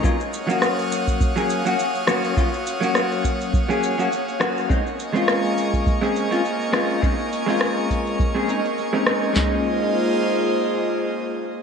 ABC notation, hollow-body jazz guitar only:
X:1
M:4/4
L:1/16
Q:"Swing 16ths" 1/4=103
K:Bbm
V:1 name="Hollow-body jazz guitar"
[G,B,DF] z2 [G,B,DG]6 [G,B,DA]2 [G,B,DG] z2 [G,B,DG]2 | [G,B,DF] z2 [G,B,DG]6 [G,B,DA]2 [G,B,DG] z2 [G,B,DG]2 | [A,CDE] z2 [A,CDF]6 [A,CDA]2 [A,CDF] z2 [A,CDF]2 | [A,CDE] z2 [A,CDF]6 [A,CDA] [A,CDE] z2 [A,CDE] [A,CDE]2 |
[A,CDE]16 |]